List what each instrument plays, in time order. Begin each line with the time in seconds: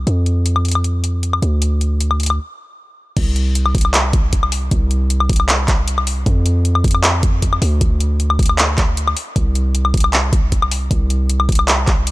0.07 808-style bass F2, closed hi-hat
0.26 closed hi-hat
0.46 closed hi-hat
0.56 high woodblock
0.65 closed hi-hat
0.68 closed hi-hat
0.71 closed hi-hat, high woodblock
0.84 closed hi-hat
1.04 closed hi-hat
1.23 closed hi-hat
1.33 high woodblock
1.42 808-style bass D2, closed hi-hat
1.62 closed hi-hat
1.81 closed hi-hat
2.00 closed hi-hat
2.11 high woodblock
2.20 closed hi-hat
2.23 closed hi-hat
2.26 closed hi-hat, high woodblock
3.17 808-style bass C2, kick, closed hi-hat, crash
3.36 closed hi-hat
3.55 closed hi-hat
3.66 high woodblock
3.75 kick, closed hi-hat
3.78 closed hi-hat
3.81 closed hi-hat, high woodblock
3.94 clap, closed hi-hat
4.13 kick, closed hi-hat
4.33 kick, closed hi-hat
4.43 high woodblock
4.52 open hi-hat
4.71 808-style bass C2, kick, closed hi-hat
4.91 closed hi-hat
5.10 closed hi-hat
5.20 high woodblock
5.29 kick, closed hi-hat
5.33 closed hi-hat
5.36 closed hi-hat, high woodblock
5.49 clap, closed hi-hat
5.68 kick, clap, closed hi-hat
5.88 closed hi-hat
5.98 high woodblock
6.07 open hi-hat
6.26 808-style bass F2, kick, closed hi-hat
6.46 closed hi-hat
6.65 closed hi-hat
6.75 high woodblock
6.84 kick, closed hi-hat
6.88 closed hi-hat
6.91 closed hi-hat, high woodblock
7.04 clap, closed hi-hat
7.23 kick, closed hi-hat
7.42 kick, closed hi-hat
7.53 high woodblock
7.62 808-style bass D2, open hi-hat
7.81 kick, closed hi-hat
8.00 closed hi-hat
8.20 closed hi-hat
8.30 high woodblock
8.39 kick, closed hi-hat
8.43 closed hi-hat
8.46 closed hi-hat, high woodblock
8.59 clap, closed hi-hat
8.78 kick, clap, closed hi-hat
8.97 closed hi-hat
9.08 high woodblock
9.17 open hi-hat
9.36 808-style bass C2, kick, closed hi-hat
9.55 closed hi-hat
9.75 closed hi-hat
9.85 high woodblock
9.94 kick, closed hi-hat
9.97 closed hi-hat
10.00 closed hi-hat, high woodblock
10.13 clap, closed hi-hat
10.33 kick, closed hi-hat
10.52 kick, closed hi-hat
10.62 high woodblock
10.71 open hi-hat
10.91 808-style bass C2, kick, closed hi-hat
11.10 closed hi-hat
11.30 closed hi-hat
11.40 high woodblock
11.49 kick, closed hi-hat
11.52 closed hi-hat
11.55 closed hi-hat, high woodblock
11.68 clap, closed hi-hat
11.88 kick, clap, closed hi-hat
12.07 closed hi-hat